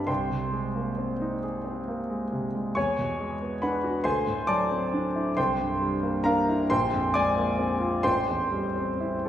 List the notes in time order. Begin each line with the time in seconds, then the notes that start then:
Already playing: G2 G3 C4 E4 G4 A4 B4 D5 E5 F5 G5 A5 B5
0.07 C2 C5 G5 C6
0.30 C3
0.52 G#3
0.75 A#3
0.98 C4
1.21 D#4
1.43 G#4
1.64 C4
1.88 A#3
2.10 G#3
2.33 C3
2.55 G#3
2.75 E2 C#5 G#5 C#6
2.99 B2
3.20 G#3
3.42 B3
3.62 D4 B4 F#5 B5
3.84 F#4
4.04 D2 C5 G#5 C6
4.27 A2
4.47 F#3 D5 A5 D6
4.71 C4
4.94 D4
5.15 E4
5.37 C2 C5 G5 C6
5.60 G2
5.82 G3
6.03 A#3
6.24 D4 A#4 F5 A#5
6.48 E4
6.70 A#1 C5 G5 C6
6.93 F2
7.14 G#3 D5 G#5 D6
7.37 A#3
7.58 C4
7.80 F4
8.03 A1 C5 G5 C6
8.28 E2
8.50 G3
8.76 C4
9.00 E4
9.26 A4